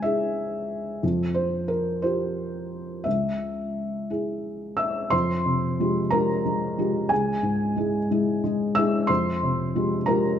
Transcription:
Already playing: C#2 G#5
0.02 E4 G#4 E5
1.03 F2
1.34 C5
1.68 A#4
2.02 F4 G4 C5
3.04 C#2 E5
4.10 E4 G#4
4.77 E5 E6
5.10 F2 C5 C6
5.46 C3
5.80 G#3 F4 G4
6.11 G#3 F4 G4 A#4 A#5
6.46 G#3
6.78 G#3 F4 G4
7.09 C#2 G#4 G#5
7.43 G#2
7.76 G#3 E4 G#4
8.11 G#3 E4 G#4
8.44 G#3
8.75 G#3 E4 G#4 E5 E6
9.07 F2 C5 C6
9.43 C3
9.75 G#3 F4 G4
10.06 G#3 F4 G4 A#4 A#5

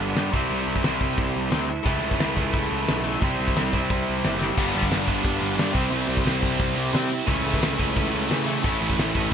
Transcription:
Already playing: G2 D3 G3 B3 D4
0.00 G1
0.16 G2, snare, open hi-hat
0.31 C2 C3 G3 C4 E4, kick
0.50 C2, open hi-hat
0.67 C2
0.76 kick
0.83 C2 C3 G3 C4 E4, snare, open hi-hat
1.01 C2, kick
1.17 C2, kick, open hi-hat
1.36 C2
1.51 D2 C3 G3 C4, snare, open hi-hat
1.83 C#2 A2 C#3 E3 A3, kick, open hi-hat
1.87 A3 E4
2.04 C#2
2.11 kick
2.20 C#2, snare, open hi-hat
2.36 C#2 C#3 E3 A3 E4, kick
2.54 C#2, kick, open hi-hat
2.71 C#2
2.88 B1, snare, open hi-hat
3.04 A2 E3 A3
3.20 C2 C3 G3 C4, kick, open hi-hat
3.24 C4 E4
3.40 C2
3.48 kick
3.56 C2, snare, open hi-hat
3.72 C2 C3 G3 C4 E4, kick
3.90 C2, kick, open hi-hat
4.09 C2
4.24 F#1, snare, open hi-hat
4.39 C3 G3 C4, snare
4.55 G1 G2 D3 G3 B3, kick, crash
4.60 D4
4.74 G1 G2 D3 G3
4.83 kick
4.90 G1 G2 D3 G3, snare, open hi-hat
5.07 G1 G2 D3 G3 B3 D4, kick
5.24 G1 G2 D3 G3, kick, open hi-hat
5.40 G1 G2 D3 G3
5.57 G2 D3 G3, snare, open hi-hat
5.72 C2 C3 G3 C4 E4, kick
5.91 C2 C3 G3 C4, open hi-hat
6.08 C2 C3 G3 C4
6.17 kick
6.24 C2 C3 G3 C4 E4, snare, open hi-hat
6.41 C2 C3 G3 C4, kick
6.57 C2 C3 G3 C4, kick, open hi-hat
6.76 C2 C3 G3 C4
6.92 C3 G3 C4, snare, open hi-hat
7.11 C3 G3 C4
7.26 C#2 A2 C#3 E3 A3 C#4 E4, kick, open hi-hat
7.30 A3
7.44 C#2 A2 E3 A3
7.54 kick
7.62 C#2 A2 E3 A3, snare, open hi-hat
7.78 C#2 A2 C#3 E3 A3 C#4 E4, kick
7.95 C#2 A2 E3 A3, kick, open hi-hat
8.12 C#2 A2 E3 A3
8.29 A2 C#3 E3 A3, snare, open hi-hat
8.45 A2 E3 A3
8.50 A2
8.62 A1 A2 E3 A3 C#4, kick, open hi-hat
8.66 E4
8.81 A1 A2 E3 A3
8.90 kick
8.97 A1 A2 E3 A3, snare, open hi-hat
9.14 A1 A2 E3 A3 C#4 E4, kick

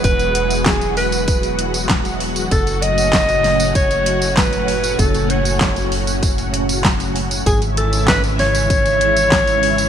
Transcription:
Already playing: E3 F#3 G#3 B3 F#4
0.04 E1 B4, kick, closed hi-hat, tambourine
0.19 closed hi-hat, tambourine
0.35 closed hi-hat
0.51 closed hi-hat, tambourine
0.66 G#4, kick, snare, clap, closed hi-hat, tambourine
0.81 closed hi-hat, tambourine
0.97 B4, open hi-hat
1.12 closed hi-hat, tambourine
1.28 kick, closed hi-hat, tambourine
1.43 closed hi-hat, tambourine
1.59 closed hi-hat
1.74 closed hi-hat, tambourine
1.90 kick, snare, clap, closed hi-hat, tambourine
2.05 closed hi-hat, tambourine
2.20 open hi-hat
2.36 closed hi-hat, tambourine
2.51 F#1 A2 C#3 C#4 A4, kick, closed hi-hat, tambourine
2.67 closed hi-hat, tambourine
2.82 D#5, closed hi-hat
2.98 closed hi-hat, tambourine
3.13 kick, snare, clap, closed hi-hat, tambourine
3.29 closed hi-hat, tambourine
3.44 snare, open hi-hat
3.60 closed hi-hat, tambourine
3.75 C#5, kick, closed hi-hat, tambourine
3.91 closed hi-hat, tambourine
4.06 closed hi-hat
4.22 closed hi-hat, tambourine
4.37 B4, kick, snare, clap, closed hi-hat, tambourine
4.53 closed hi-hat, tambourine
4.68 open hi-hat
4.84 closed hi-hat, tambourine
4.99 F#1 A4, kick, closed hi-hat, tambourine
5.15 closed hi-hat, tambourine
5.30 C#5, closed hi-hat
5.45 closed hi-hat, tambourine
5.61 kick, snare, clap, closed hi-hat, tambourine
5.76 closed hi-hat, tambourine
5.92 open hi-hat
6.07 closed hi-hat, tambourine
6.23 kick, closed hi-hat, tambourine
6.38 closed hi-hat, tambourine
6.54 closed hi-hat
6.69 closed hi-hat, tambourine
6.84 kick, snare, clap, closed hi-hat, tambourine
7.00 closed hi-hat, tambourine
7.16 open hi-hat
7.31 closed hi-hat, tambourine
7.46 G#1 G#2 E3 C#4 E4 G#4, kick, closed hi-hat, tambourine
7.62 closed hi-hat, tambourine
7.77 A4, closed hi-hat
7.93 closed hi-hat, tambourine
8.08 B4, kick, snare, clap, closed hi-hat, tambourine
8.24 closed hi-hat, tambourine
8.39 C#5, snare, open hi-hat
8.55 closed hi-hat, tambourine
8.70 kick, closed hi-hat, tambourine
8.86 closed hi-hat, tambourine
9.01 closed hi-hat
9.17 closed hi-hat, tambourine
9.32 kick, snare, clap, closed hi-hat, tambourine
9.47 closed hi-hat, tambourine
9.63 open hi-hat
9.78 closed hi-hat, tambourine

